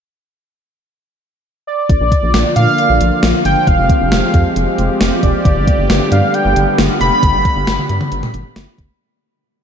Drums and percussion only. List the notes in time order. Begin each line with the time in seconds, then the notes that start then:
1.89 kick, closed hi-hat
2.12 kick, closed hi-hat
2.34 snare, closed hi-hat
2.56 closed hi-hat
2.78 closed hi-hat
3.01 closed hi-hat
3.23 snare, closed hi-hat
3.45 closed hi-hat
3.67 kick, closed hi-hat
3.89 kick, closed hi-hat
4.12 snare, closed hi-hat
4.34 kick, closed hi-hat
4.56 closed hi-hat
4.78 closed hi-hat
5.01 snare, closed hi-hat
5.23 kick, closed hi-hat
5.45 kick, closed hi-hat
5.67 kick, closed hi-hat
5.90 snare, closed hi-hat
6.12 closed hi-hat
6.34 closed hi-hat
6.56 closed hi-hat
6.78 snare, closed hi-hat
7.01 closed hi-hat
7.23 kick, closed hi-hat
7.45 kick, closed hi-hat
7.67 snare, closed hi-hat
7.79 mid tom
7.89 closed hi-hat
8.01 mid tom
8.12 closed hi-hat
8.23 mid tom
8.34 closed hi-hat
8.56 snare, closed hi-hat
8.78 kick, closed hi-hat